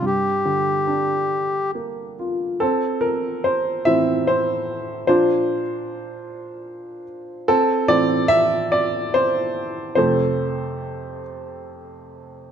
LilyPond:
<<
  \new Staff \with { instrumentName = "Accordion" } { \time 3/4 \key a \phrygian \tempo 4 = 72 g'2 r4 | r2. | r2. | r2. |
r2. | }
  \new Staff \with { instrumentName = "Upright piano" } { \time 3/4 \key a \phrygian << { r2. | a'8 bes'8 c''8 e''8 c''4 | c''2~ c''8 r8 | a'8 d''8 e''8 d''8 c''4 |
c''4. r4. | } \\ { r2. | c'4. r4. | f'2~ f'8 r8 | c'4. r4. |
a'4. r4. | } >> }
  \new Staff \with { instrumentName = "Upright piano" } { \clef bass \time 3/4 \key a \phrygian g,8 d8 d'4 bes8 f'8 | r4. <a, e c'>4. | <bes, f d'>8 r2 r8 | r8 <a, e c'>2~ <a, e c'>8 |
<f, c a>2. | }
>>